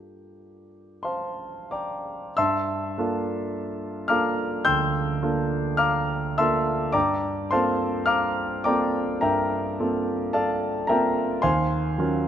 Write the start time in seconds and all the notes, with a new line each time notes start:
Already playing: G2 A#3 D4 F4 G4 A4
1.03 C5 F5 A5 C6
1.71 D5 G5 A#5 D6
2.37 G2 E5 A5 C6 E6
2.98 A#3 D4 F4 A4
4.08 A#3 D4 F4 A4 F5 A#5 D6 F6
4.65 D2 G5 C6 E6 G6
5.22 A#3 D4 F4 A4
5.77 F5 A#5 D6 F6
6.38 A#3 D4 F4 A4 E5 A5 C6 E6
6.92 G2 D5 G5 A#5 D6
7.51 A#3 C4 F4 A4 C5 F5 A5 C6
8.06 F5 A#5 D6 F6
8.64 A#3 C4 F4 A4 D5 G5 A#5 D6
9.21 G2 A#4 E5 G5 A#5
9.79 A#3 C4 F4 A4
10.33 A4 D5 F5 A5
10.87 A#3 C4 F4 A#4 E5 G5 A#5
10.91 A4
11.42 D#2 C5 F5 G#5 C6
11.98 F#3 C#4 F4 A#4